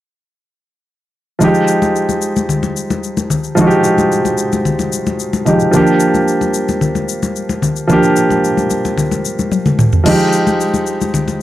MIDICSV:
0, 0, Header, 1, 3, 480
1, 0, Start_track
1, 0, Tempo, 540541
1, 1251, Time_signature, 4, 2, 24, 8
1, 10143, End_track
2, 0, Start_track
2, 0, Title_t, "Grand piano"
2, 0, Program_c, 0, 0
2, 1232, Note_on_c, 0, 53, 72
2, 1248, Note_on_c, 0, 56, 66
2, 1263, Note_on_c, 0, 63, 64
2, 1279, Note_on_c, 0, 67, 80
2, 1404, Control_c, 0, 64, 127
2, 3126, Note_off_c, 0, 53, 0
2, 3134, Note_off_c, 0, 56, 0
2, 3142, Note_off_c, 0, 63, 0
2, 3150, Note_off_c, 0, 67, 0
2, 3153, Note_on_c, 0, 53, 72
2, 3168, Note_on_c, 0, 56, 66
2, 3184, Note_on_c, 0, 63, 66
2, 3199, Note_on_c, 0, 66, 65
2, 3245, Note_off_c, 0, 66, 0
2, 3257, Note_on_c, 0, 67, 78
2, 4808, Note_off_c, 0, 53, 0
2, 4816, Note_off_c, 0, 56, 0
2, 4824, Note_off_c, 0, 63, 0
2, 4843, Note_on_c, 0, 53, 54
2, 4851, Note_on_c, 0, 56, 50
2, 4853, Note_off_c, 0, 67, 0
2, 4858, Note_on_c, 0, 63, 49
2, 4866, Note_on_c, 0, 67, 59
2, 5059, Note_off_c, 0, 53, 0
2, 5072, Note_on_c, 0, 53, 72
2, 5087, Note_on_c, 0, 58, 67
2, 5091, Note_off_c, 0, 56, 0
2, 5095, Note_off_c, 0, 63, 0
2, 5099, Note_off_c, 0, 67, 0
2, 5103, Note_on_c, 0, 62, 67
2, 5104, Control_c, 0, 64, 0
2, 5118, Note_on_c, 0, 67, 81
2, 5232, Control_c, 0, 64, 127
2, 6966, Note_off_c, 0, 53, 0
2, 6974, Note_off_c, 0, 58, 0
2, 6981, Note_off_c, 0, 62, 0
2, 6989, Note_off_c, 0, 67, 0
2, 6993, Note_on_c, 0, 53, 76
2, 7008, Note_on_c, 0, 58, 66
2, 7024, Note_on_c, 0, 62, 67
2, 7039, Note_on_c, 0, 67, 78
2, 8887, Note_off_c, 0, 53, 0
2, 8894, Note_off_c, 0, 58, 0
2, 8902, Note_off_c, 0, 62, 0
2, 8910, Note_off_c, 0, 67, 0
2, 8912, Note_on_c, 0, 53, 72
2, 8927, Note_on_c, 0, 56, 69
2, 8943, Control_c, 0, 64, 0
2, 8943, Note_on_c, 0, 63, 69
2, 8958, Note_on_c, 0, 67, 78
2, 9098, Control_c, 0, 64, 127
2, 10143, Note_off_c, 0, 53, 0
2, 10143, Note_off_c, 0, 56, 0
2, 10143, Note_off_c, 0, 63, 0
2, 10143, Note_off_c, 0, 67, 0
2, 10143, End_track
3, 0, Start_track
3, 0, Title_t, "Drums"
3, 1251, Note_on_c, 9, 82, 72
3, 1253, Note_on_c, 9, 64, 75
3, 1340, Note_off_c, 9, 82, 0
3, 1342, Note_off_c, 9, 64, 0
3, 1372, Note_on_c, 9, 82, 47
3, 1460, Note_off_c, 9, 82, 0
3, 1489, Note_on_c, 9, 82, 98
3, 1577, Note_off_c, 9, 82, 0
3, 1616, Note_on_c, 9, 63, 69
3, 1617, Note_on_c, 9, 82, 47
3, 1705, Note_off_c, 9, 63, 0
3, 1706, Note_off_c, 9, 82, 0
3, 1738, Note_on_c, 9, 82, 67
3, 1826, Note_off_c, 9, 82, 0
3, 1854, Note_on_c, 9, 63, 63
3, 1858, Note_on_c, 9, 82, 52
3, 1943, Note_off_c, 9, 63, 0
3, 1947, Note_off_c, 9, 82, 0
3, 1967, Note_on_c, 9, 82, 85
3, 2056, Note_off_c, 9, 82, 0
3, 2098, Note_on_c, 9, 82, 50
3, 2101, Note_on_c, 9, 63, 63
3, 2187, Note_off_c, 9, 82, 0
3, 2189, Note_off_c, 9, 63, 0
3, 2211, Note_on_c, 9, 64, 69
3, 2218, Note_on_c, 9, 82, 58
3, 2299, Note_off_c, 9, 64, 0
3, 2307, Note_off_c, 9, 82, 0
3, 2334, Note_on_c, 9, 63, 75
3, 2337, Note_on_c, 9, 82, 45
3, 2423, Note_off_c, 9, 63, 0
3, 2425, Note_off_c, 9, 82, 0
3, 2454, Note_on_c, 9, 82, 84
3, 2543, Note_off_c, 9, 82, 0
3, 2579, Note_on_c, 9, 63, 71
3, 2579, Note_on_c, 9, 82, 48
3, 2667, Note_off_c, 9, 63, 0
3, 2668, Note_off_c, 9, 82, 0
3, 2695, Note_on_c, 9, 82, 64
3, 2784, Note_off_c, 9, 82, 0
3, 2816, Note_on_c, 9, 63, 68
3, 2817, Note_on_c, 9, 82, 50
3, 2905, Note_off_c, 9, 63, 0
3, 2906, Note_off_c, 9, 82, 0
3, 2931, Note_on_c, 9, 64, 69
3, 2937, Note_on_c, 9, 82, 81
3, 3020, Note_off_c, 9, 64, 0
3, 3026, Note_off_c, 9, 82, 0
3, 3052, Note_on_c, 9, 82, 46
3, 3141, Note_off_c, 9, 82, 0
3, 3171, Note_on_c, 9, 82, 71
3, 3175, Note_on_c, 9, 64, 76
3, 3260, Note_off_c, 9, 82, 0
3, 3264, Note_off_c, 9, 64, 0
3, 3292, Note_on_c, 9, 82, 46
3, 3381, Note_off_c, 9, 82, 0
3, 3409, Note_on_c, 9, 82, 97
3, 3497, Note_off_c, 9, 82, 0
3, 3536, Note_on_c, 9, 63, 70
3, 3537, Note_on_c, 9, 82, 47
3, 3625, Note_off_c, 9, 63, 0
3, 3626, Note_off_c, 9, 82, 0
3, 3657, Note_on_c, 9, 82, 69
3, 3746, Note_off_c, 9, 82, 0
3, 3775, Note_on_c, 9, 63, 62
3, 3778, Note_on_c, 9, 82, 50
3, 3864, Note_off_c, 9, 63, 0
3, 3867, Note_off_c, 9, 82, 0
3, 3887, Note_on_c, 9, 82, 82
3, 3976, Note_off_c, 9, 82, 0
3, 4017, Note_on_c, 9, 82, 51
3, 4022, Note_on_c, 9, 63, 64
3, 4106, Note_off_c, 9, 82, 0
3, 4111, Note_off_c, 9, 63, 0
3, 4132, Note_on_c, 9, 64, 66
3, 4136, Note_on_c, 9, 82, 60
3, 4221, Note_off_c, 9, 64, 0
3, 4225, Note_off_c, 9, 82, 0
3, 4254, Note_on_c, 9, 63, 72
3, 4256, Note_on_c, 9, 82, 43
3, 4342, Note_off_c, 9, 63, 0
3, 4345, Note_off_c, 9, 82, 0
3, 4373, Note_on_c, 9, 82, 90
3, 4461, Note_off_c, 9, 82, 0
3, 4497, Note_on_c, 9, 82, 47
3, 4499, Note_on_c, 9, 63, 67
3, 4586, Note_off_c, 9, 82, 0
3, 4588, Note_off_c, 9, 63, 0
3, 4613, Note_on_c, 9, 82, 62
3, 4702, Note_off_c, 9, 82, 0
3, 4736, Note_on_c, 9, 63, 63
3, 4736, Note_on_c, 9, 82, 49
3, 4824, Note_off_c, 9, 63, 0
3, 4825, Note_off_c, 9, 82, 0
3, 4850, Note_on_c, 9, 64, 71
3, 4855, Note_on_c, 9, 82, 80
3, 4939, Note_off_c, 9, 64, 0
3, 4944, Note_off_c, 9, 82, 0
3, 4971, Note_on_c, 9, 82, 46
3, 5060, Note_off_c, 9, 82, 0
3, 5089, Note_on_c, 9, 82, 76
3, 5093, Note_on_c, 9, 64, 76
3, 5178, Note_off_c, 9, 82, 0
3, 5182, Note_off_c, 9, 64, 0
3, 5209, Note_on_c, 9, 82, 47
3, 5298, Note_off_c, 9, 82, 0
3, 5326, Note_on_c, 9, 82, 97
3, 5415, Note_off_c, 9, 82, 0
3, 5454, Note_on_c, 9, 63, 70
3, 5455, Note_on_c, 9, 82, 46
3, 5543, Note_off_c, 9, 63, 0
3, 5544, Note_off_c, 9, 82, 0
3, 5576, Note_on_c, 9, 82, 69
3, 5664, Note_off_c, 9, 82, 0
3, 5694, Note_on_c, 9, 63, 64
3, 5697, Note_on_c, 9, 82, 52
3, 5782, Note_off_c, 9, 63, 0
3, 5786, Note_off_c, 9, 82, 0
3, 5806, Note_on_c, 9, 82, 81
3, 5895, Note_off_c, 9, 82, 0
3, 5936, Note_on_c, 9, 82, 50
3, 5939, Note_on_c, 9, 63, 67
3, 6025, Note_off_c, 9, 82, 0
3, 6028, Note_off_c, 9, 63, 0
3, 6049, Note_on_c, 9, 64, 69
3, 6055, Note_on_c, 9, 82, 62
3, 6138, Note_off_c, 9, 64, 0
3, 6144, Note_off_c, 9, 82, 0
3, 6173, Note_on_c, 9, 63, 73
3, 6175, Note_on_c, 9, 82, 43
3, 6262, Note_off_c, 9, 63, 0
3, 6264, Note_off_c, 9, 82, 0
3, 6292, Note_on_c, 9, 82, 90
3, 6381, Note_off_c, 9, 82, 0
3, 6418, Note_on_c, 9, 63, 69
3, 6418, Note_on_c, 9, 82, 48
3, 6506, Note_off_c, 9, 63, 0
3, 6507, Note_off_c, 9, 82, 0
3, 6534, Note_on_c, 9, 82, 62
3, 6623, Note_off_c, 9, 82, 0
3, 6654, Note_on_c, 9, 63, 64
3, 6656, Note_on_c, 9, 82, 51
3, 6743, Note_off_c, 9, 63, 0
3, 6745, Note_off_c, 9, 82, 0
3, 6769, Note_on_c, 9, 64, 68
3, 6776, Note_on_c, 9, 82, 82
3, 6858, Note_off_c, 9, 64, 0
3, 6865, Note_off_c, 9, 82, 0
3, 6892, Note_on_c, 9, 82, 47
3, 6981, Note_off_c, 9, 82, 0
3, 7011, Note_on_c, 9, 82, 71
3, 7012, Note_on_c, 9, 64, 77
3, 7100, Note_off_c, 9, 82, 0
3, 7101, Note_off_c, 9, 64, 0
3, 7132, Note_on_c, 9, 82, 47
3, 7221, Note_off_c, 9, 82, 0
3, 7249, Note_on_c, 9, 82, 97
3, 7338, Note_off_c, 9, 82, 0
3, 7374, Note_on_c, 9, 63, 69
3, 7377, Note_on_c, 9, 82, 45
3, 7463, Note_off_c, 9, 63, 0
3, 7466, Note_off_c, 9, 82, 0
3, 7498, Note_on_c, 9, 82, 72
3, 7587, Note_off_c, 9, 82, 0
3, 7613, Note_on_c, 9, 63, 63
3, 7618, Note_on_c, 9, 82, 50
3, 7702, Note_off_c, 9, 63, 0
3, 7707, Note_off_c, 9, 82, 0
3, 7728, Note_on_c, 9, 82, 83
3, 7731, Note_on_c, 9, 63, 49
3, 7816, Note_off_c, 9, 82, 0
3, 7819, Note_off_c, 9, 63, 0
3, 7858, Note_on_c, 9, 82, 49
3, 7859, Note_on_c, 9, 63, 67
3, 7947, Note_off_c, 9, 82, 0
3, 7948, Note_off_c, 9, 63, 0
3, 7970, Note_on_c, 9, 64, 70
3, 7978, Note_on_c, 9, 82, 61
3, 8059, Note_off_c, 9, 64, 0
3, 8066, Note_off_c, 9, 82, 0
3, 8094, Note_on_c, 9, 63, 72
3, 8097, Note_on_c, 9, 82, 45
3, 8183, Note_off_c, 9, 63, 0
3, 8186, Note_off_c, 9, 82, 0
3, 8214, Note_on_c, 9, 82, 90
3, 8303, Note_off_c, 9, 82, 0
3, 8339, Note_on_c, 9, 63, 69
3, 8339, Note_on_c, 9, 82, 48
3, 8427, Note_off_c, 9, 82, 0
3, 8428, Note_off_c, 9, 63, 0
3, 8451, Note_on_c, 9, 48, 51
3, 8454, Note_on_c, 9, 82, 62
3, 8540, Note_off_c, 9, 48, 0
3, 8543, Note_off_c, 9, 82, 0
3, 8576, Note_on_c, 9, 47, 52
3, 8576, Note_on_c, 9, 63, 69
3, 8577, Note_on_c, 9, 82, 50
3, 8665, Note_off_c, 9, 47, 0
3, 8665, Note_off_c, 9, 63, 0
3, 8666, Note_off_c, 9, 82, 0
3, 8692, Note_on_c, 9, 45, 82
3, 8692, Note_on_c, 9, 64, 71
3, 8697, Note_on_c, 9, 82, 86
3, 8781, Note_off_c, 9, 45, 0
3, 8781, Note_off_c, 9, 64, 0
3, 8785, Note_off_c, 9, 82, 0
3, 8813, Note_on_c, 9, 82, 45
3, 8816, Note_on_c, 9, 43, 82
3, 8901, Note_off_c, 9, 82, 0
3, 8905, Note_off_c, 9, 43, 0
3, 8931, Note_on_c, 9, 49, 76
3, 8934, Note_on_c, 9, 64, 75
3, 9020, Note_off_c, 9, 49, 0
3, 9023, Note_off_c, 9, 64, 0
3, 9052, Note_on_c, 9, 82, 46
3, 9140, Note_off_c, 9, 82, 0
3, 9168, Note_on_c, 9, 82, 97
3, 9257, Note_off_c, 9, 82, 0
3, 9296, Note_on_c, 9, 63, 70
3, 9297, Note_on_c, 9, 82, 45
3, 9385, Note_off_c, 9, 63, 0
3, 9386, Note_off_c, 9, 82, 0
3, 9417, Note_on_c, 9, 82, 73
3, 9506, Note_off_c, 9, 82, 0
3, 9535, Note_on_c, 9, 63, 65
3, 9539, Note_on_c, 9, 82, 51
3, 9624, Note_off_c, 9, 63, 0
3, 9627, Note_off_c, 9, 82, 0
3, 9648, Note_on_c, 9, 82, 78
3, 9736, Note_off_c, 9, 82, 0
3, 9778, Note_on_c, 9, 82, 54
3, 9781, Note_on_c, 9, 63, 64
3, 9867, Note_off_c, 9, 82, 0
3, 9870, Note_off_c, 9, 63, 0
3, 9891, Note_on_c, 9, 64, 72
3, 9897, Note_on_c, 9, 82, 60
3, 9979, Note_off_c, 9, 64, 0
3, 9985, Note_off_c, 9, 82, 0
3, 10014, Note_on_c, 9, 63, 73
3, 10017, Note_on_c, 9, 82, 43
3, 10102, Note_off_c, 9, 63, 0
3, 10105, Note_off_c, 9, 82, 0
3, 10143, End_track
0, 0, End_of_file